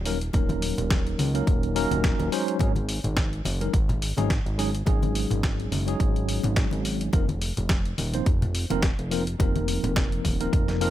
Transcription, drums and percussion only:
0.06 open hi-hat loud
0.21 closed hi-hat soft
0.33 kick loud
0.33 closed hi-hat soft
0.33 muted conga medium
0.49 closed hi-hat soft
0.49 high conga medium
0.62 open hi-hat loud
0.78 closed hi-hat soft
0.78 low conga medium
0.90 kick loud
0.90 snare loud
0.90 closed hi-hat soft
1.07 closed hi-hat soft
1.19 open hi-hat loud
1.19 high conga medium
1.35 closed hi-hat soft
1.47 kick loud
1.47 closed hi-hat soft
1.63 closed hi-hat soft
1.76 open hi-hat loud
1.91 closed hi-hat soft
1.91 high conga medium
1.91 low conga medium
2.04 kick loud
2.04 snare loud
2.04 closed hi-hat soft
2.20 closed hi-hat soft
2.20 muted conga soft
2.32 open hi-hat loud
2.48 closed hi-hat soft
2.59 kick loud
2.59 closed hi-hat soft
2.59 muted conga medium
2.76 closed hi-hat soft
2.76 high conga medium
2.89 open hi-hat loud
3.04 closed hi-hat soft
3.04 low conga medium
3.17 kick loud
3.17 snare loud
3.17 closed hi-hat soft
3.33 closed hi-hat soft
3.45 open hi-hat loud
3.45 high conga medium
3.61 closed hi-hat soft
3.74 kick loud
3.74 closed hi-hat soft
3.89 closed hi-hat soft
3.89 low conga medium
4.02 open hi-hat loud
4.17 closed hi-hat soft
4.17 muted conga soft
4.17 high conga medium
4.30 kick loud
4.30 snare loud
4.30 closed hi-hat soft
4.46 closed hi-hat soft
4.59 open hi-hat loud
4.75 closed hi-hat soft
4.86 kick loud
4.86 closed hi-hat soft
4.86 muted conga medium
5.02 closed hi-hat soft
5.02 high conga medium
5.15 open hi-hat loud
5.30 closed hi-hat soft
5.30 low conga medium
5.43 kick loud
5.43 snare loud
5.43 closed hi-hat soft
5.60 closed hi-hat soft
5.72 open hi-hat loud
5.72 high conga medium
5.88 closed hi-hat soft
6.00 kick loud
6.00 closed hi-hat soft
6.16 closed hi-hat soft
6.29 open hi-hat medium
6.44 closed hi-hat medium
6.44 high conga medium
6.44 low conga medium
6.56 kick loud
6.56 snare loud
6.56 closed hi-hat soft
6.71 closed hi-hat soft
6.71 muted conga medium
6.85 open hi-hat loud
7.01 closed hi-hat soft
7.13 kick loud
7.13 closed hi-hat medium
7.13 muted conga medium
7.29 closed hi-hat soft
7.29 high conga medium
7.42 open hi-hat loud
7.57 closed hi-hat soft
7.57 low conga medium
7.69 kick loud
7.69 snare loud
7.69 closed hi-hat medium
7.85 closed hi-hat soft
7.98 open hi-hat medium
7.98 high conga medium
8.14 closed hi-hat medium
8.26 kick loud
8.26 closed hi-hat medium
8.42 closed hi-hat soft
8.42 low conga medium
8.55 open hi-hat loud
8.70 closed hi-hat medium
8.70 muted conga soft
8.70 high conga medium
8.82 kick loud
8.82 snare loud
8.82 closed hi-hat medium
8.99 closed hi-hat soft
9.11 open hi-hat loud
9.27 closed hi-hat medium
9.40 kick loud
9.40 closed hi-hat medium
9.40 muted conga medium
9.56 closed hi-hat soft
9.56 high conga medium
9.68 open hi-hat loud
9.84 closed hi-hat medium
9.84 low conga medium
9.96 kick loud
9.96 snare loud
9.96 closed hi-hat medium
10.12 closed hi-hat soft
10.25 kick medium
10.25 open hi-hat medium
10.25 high conga medium
10.41 closed hi-hat medium
10.53 kick loud
10.53 closed hi-hat medium
10.68 snare soft
10.68 closed hi-hat soft
10.81 open hi-hat loud

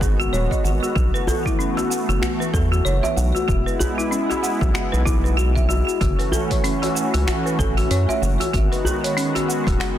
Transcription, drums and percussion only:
0.01 kick loud
0.01 shaker medium
0.21 shaker soft
0.33 djembe slap soft
0.33 shaker soft
0.51 kick medium
0.51 shaker soft
0.64 djembe tone medium
0.64 shaker medium
0.84 shaker soft
0.96 kick loud
0.96 shaker soft
1.15 shaker soft
1.27 djembe bass medium
1.27 shaker medium
1.45 kick medium
1.45 djembe tone soft
1.45 shaker soft
1.60 shaker soft
1.77 djembe slap medium
1.77 shaker soft
1.92 shaker medium
2.10 shaker soft
2.22 finger snap medium
2.22 djembe tone soft
2.22 djembe bass medium
2.22 shaker soft
2.42 shaker soft
2.54 kick loud
2.54 djembe slap soft
2.54 shaker medium
2.73 shaker soft
2.86 shaker soft
3.03 djembe slap soft
3.03 djembe tone medium
3.03 shaker soft
3.18 shaker medium
3.35 djembe tone medium
3.35 shaker soft
3.48 kick loud
3.48 shaker soft
3.68 shaker soft
3.80 djembe bass loud
3.80 shaker medium
3.98 djembe tone soft
3.98 shaker soft
4.13 shaker soft
4.31 djembe slap medium
4.31 shaker soft
4.44 shaker medium
4.61 kick loud
4.61 shaker soft
4.75 finger snap medium
4.75 djembe slap medium
4.75 shaker soft
4.94 shaker soft
5.06 kick loud
5.06 shaker medium
5.26 shaker soft
5.38 djembe slap soft
5.38 shaker soft
5.56 kick medium
5.56 shaker soft
5.69 djembe tone medium
5.69 shaker medium
5.89 shaker soft
6.01 kick loud
6.01 open hi-hat soft
6.01 shaker soft
6.19 open hi-hat soft
6.19 shaker soft
6.32 djembe bass medium
6.32 shaker medium
6.51 kick medium
6.51 open hi-hat soft
6.51 djembe tone soft
6.51 shaker soft
6.64 open hi-hat medium
6.64 shaker soft
6.83 open hi-hat soft
6.83 djembe slap medium
6.83 shaker soft
6.97 shaker medium
7.14 open hi-hat soft
7.14 shaker soft
7.27 finger snap medium
7.27 open hi-hat soft
7.27 djembe tone soft
7.27 djembe bass medium
7.27 shaker soft
7.47 shaker soft
7.59 kick loud
7.59 djembe slap soft
7.59 shaker medium
7.78 open hi-hat soft
7.78 shaker soft
7.91 open hi-hat medium
7.91 shaker soft
8.08 djembe slap soft
8.08 djembe tone medium
8.08 shaker soft
8.23 shaker medium
8.40 open hi-hat soft
8.40 djembe tone medium
8.40 shaker soft
8.54 kick loud
8.54 open hi-hat medium
8.54 shaker soft
8.73 open hi-hat soft
8.73 shaker soft
8.85 djembe bass medium
8.85 shaker medium
9.04 open hi-hat soft
9.04 shaker soft
9.18 open hi-hat medium
9.18 shaker soft
9.35 open hi-hat soft
9.35 djembe slap medium
9.35 shaker soft
9.50 shaker medium
9.67 kick loud
9.67 open hi-hat soft
9.67 shaker soft
9.80 finger snap medium
9.80 open hi-hat medium
9.80 djembe slap medium
9.80 shaker soft

